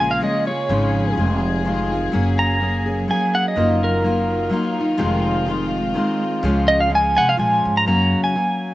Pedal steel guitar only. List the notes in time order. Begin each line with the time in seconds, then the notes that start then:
0.00 G#5
0.11 F5
0.24 D#5
0.47 C#5
2.39 A#5
3.11 G#5
3.35 F#5
3.48 D#5
3.84 A#4
6.68 D#5
6.80 F5
6.95 G#5
7.17 F#5 G#5
7.29 F5
7.40 G#5
7.77 A#5
7.88 A#5
8.24 G#5